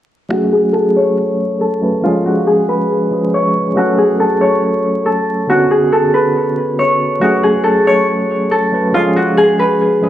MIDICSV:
0, 0, Header, 1, 3, 480
1, 0, Start_track
1, 0, Key_signature, 3, "minor"
1, 0, Tempo, 431655
1, 348, Time_signature, 4, 2, 24, 8
1, 11223, End_track
2, 0, Start_track
2, 0, Title_t, "Harp"
2, 0, Program_c, 0, 46
2, 339, Note_on_c, 0, 66, 89
2, 584, Note_on_c, 0, 68, 73
2, 810, Note_on_c, 0, 69, 80
2, 876, Note_off_c, 0, 68, 0
2, 1074, Note_on_c, 0, 73, 81
2, 1781, Note_off_c, 0, 69, 0
2, 1785, Note_on_c, 0, 69, 74
2, 2263, Note_on_c, 0, 65, 111
2, 2330, Note_off_c, 0, 66, 0
2, 2508, Note_on_c, 0, 66, 73
2, 2575, Note_off_c, 0, 65, 0
2, 2744, Note_on_c, 0, 68, 85
2, 2810, Note_off_c, 0, 69, 0
2, 2987, Note_on_c, 0, 71, 79
2, 3200, Note_off_c, 0, 73, 0
2, 3714, Note_on_c, 0, 73, 82
2, 4187, Note_off_c, 0, 66, 0
2, 4191, Note_on_c, 0, 66, 93
2, 4421, Note_off_c, 0, 68, 0
2, 4426, Note_on_c, 0, 68, 70
2, 4666, Note_on_c, 0, 69, 85
2, 4733, Note_off_c, 0, 68, 0
2, 4899, Note_off_c, 0, 73, 0
2, 4904, Note_on_c, 0, 73, 81
2, 5266, Note_off_c, 0, 71, 0
2, 5617, Note_off_c, 0, 69, 0
2, 5622, Note_on_c, 0, 69, 77
2, 6106, Note_off_c, 0, 66, 0
2, 6111, Note_on_c, 0, 66, 107
2, 6346, Note_on_c, 0, 68, 78
2, 6413, Note_off_c, 0, 69, 0
2, 6585, Note_on_c, 0, 69, 89
2, 6652, Note_off_c, 0, 68, 0
2, 6826, Note_on_c, 0, 71, 75
2, 7030, Note_off_c, 0, 73, 0
2, 7549, Note_on_c, 0, 73, 80
2, 8013, Note_off_c, 0, 66, 0
2, 8018, Note_on_c, 0, 66, 92
2, 8263, Note_on_c, 0, 68, 75
2, 8329, Note_off_c, 0, 69, 0
2, 8490, Note_on_c, 0, 69, 77
2, 8557, Note_off_c, 0, 68, 0
2, 8748, Note_off_c, 0, 73, 0
2, 8753, Note_on_c, 0, 73, 84
2, 9104, Note_off_c, 0, 71, 0
2, 9460, Note_off_c, 0, 69, 0
2, 9464, Note_on_c, 0, 69, 80
2, 9943, Note_on_c, 0, 65, 105
2, 10010, Note_off_c, 0, 66, 0
2, 10189, Note_on_c, 0, 66, 72
2, 10255, Note_off_c, 0, 65, 0
2, 10423, Note_on_c, 0, 68, 88
2, 10490, Note_off_c, 0, 69, 0
2, 10667, Note_on_c, 0, 71, 79
2, 10878, Note_off_c, 0, 73, 0
2, 11223, Note_off_c, 0, 66, 0
2, 11223, Note_off_c, 0, 68, 0
2, 11223, Note_off_c, 0, 71, 0
2, 11223, End_track
3, 0, Start_track
3, 0, Title_t, "Tine electric piano"
3, 0, Program_c, 1, 4
3, 324, Note_on_c, 1, 54, 63
3, 339, Note_on_c, 1, 57, 62
3, 355, Note_on_c, 1, 61, 58
3, 370, Note_on_c, 1, 68, 75
3, 565, Control_c, 1, 64, 127
3, 1982, Note_off_c, 1, 54, 0
3, 1990, Note_off_c, 1, 57, 0
3, 1998, Note_off_c, 1, 61, 0
3, 2005, Note_off_c, 1, 68, 0
3, 2014, Note_on_c, 1, 54, 47
3, 2021, Note_on_c, 1, 57, 45
3, 2029, Note_on_c, 1, 61, 45
3, 2037, Note_on_c, 1, 71, 55
3, 2246, Note_on_c, 1, 53, 64
3, 2261, Note_off_c, 1, 54, 0
3, 2261, Note_on_c, 1, 56, 62
3, 2263, Note_off_c, 1, 61, 0
3, 2265, Note_off_c, 1, 57, 0
3, 2272, Note_off_c, 1, 71, 0
3, 2276, Note_on_c, 1, 61, 63
3, 2285, Control_c, 1, 64, 0
3, 2291, Note_on_c, 1, 68, 69
3, 2447, Control_c, 1, 64, 127
3, 3433, Note_off_c, 1, 53, 0
3, 3440, Note_off_c, 1, 56, 0
3, 3448, Note_off_c, 1, 61, 0
3, 3456, Note_off_c, 1, 68, 0
3, 3456, Note_on_c, 1, 53, 53
3, 3464, Note_on_c, 1, 56, 46
3, 3471, Note_on_c, 1, 61, 46
3, 3479, Note_on_c, 1, 68, 54
3, 4165, Note_on_c, 1, 54, 64
3, 4179, Note_on_c, 1, 57, 60
3, 4181, Note_off_c, 1, 61, 0
3, 4182, Note_off_c, 1, 53, 0
3, 4186, Note_off_c, 1, 56, 0
3, 4193, Note_off_c, 1, 68, 0
3, 4194, Note_on_c, 1, 61, 64
3, 4200, Control_c, 1, 64, 0
3, 4209, Note_on_c, 1, 69, 82
3, 4417, Control_c, 1, 64, 127
3, 6058, Note_off_c, 1, 54, 0
3, 6065, Note_off_c, 1, 57, 0
3, 6073, Note_off_c, 1, 61, 0
3, 6081, Note_off_c, 1, 69, 0
3, 6085, Note_on_c, 1, 50, 66
3, 6101, Note_on_c, 1, 59, 58
3, 6116, Note_on_c, 1, 61, 64
3, 6121, Control_c, 1, 64, 0
3, 6130, Note_on_c, 1, 66, 80
3, 6315, Control_c, 1, 64, 127
3, 7978, Note_off_c, 1, 50, 0
3, 7986, Note_off_c, 1, 59, 0
3, 7994, Note_off_c, 1, 61, 0
3, 8001, Note_off_c, 1, 66, 0
3, 8004, Note_on_c, 1, 54, 63
3, 8019, Note_on_c, 1, 57, 65
3, 8034, Note_on_c, 1, 61, 59
3, 8044, Control_c, 1, 64, 0
3, 8049, Note_on_c, 1, 68, 76
3, 8212, Control_c, 1, 64, 127
3, 9662, Note_off_c, 1, 54, 0
3, 9670, Note_off_c, 1, 57, 0
3, 9678, Note_off_c, 1, 61, 0
3, 9685, Note_off_c, 1, 68, 0
3, 9696, Note_on_c, 1, 54, 48
3, 9703, Note_on_c, 1, 57, 43
3, 9711, Note_on_c, 1, 61, 46
3, 9718, Note_on_c, 1, 71, 55
3, 9926, Note_on_c, 1, 53, 65
3, 9942, Note_off_c, 1, 54, 0
3, 9942, Note_on_c, 1, 56, 62
3, 9944, Note_off_c, 1, 61, 0
3, 9945, Note_off_c, 1, 57, 0
3, 9953, Note_off_c, 1, 71, 0
3, 9957, Note_on_c, 1, 61, 64
3, 9963, Control_c, 1, 64, 0
3, 9972, Note_on_c, 1, 68, 71
3, 10150, Control_c, 1, 64, 127
3, 11113, Note_off_c, 1, 53, 0
3, 11121, Note_off_c, 1, 56, 0
3, 11129, Note_off_c, 1, 61, 0
3, 11136, Note_off_c, 1, 68, 0
3, 11136, Note_on_c, 1, 53, 55
3, 11144, Note_on_c, 1, 56, 45
3, 11151, Note_on_c, 1, 61, 45
3, 11159, Note_on_c, 1, 68, 55
3, 11223, Note_off_c, 1, 53, 0
3, 11223, Note_off_c, 1, 56, 0
3, 11223, Note_off_c, 1, 61, 0
3, 11223, Note_off_c, 1, 68, 0
3, 11223, End_track
0, 0, End_of_file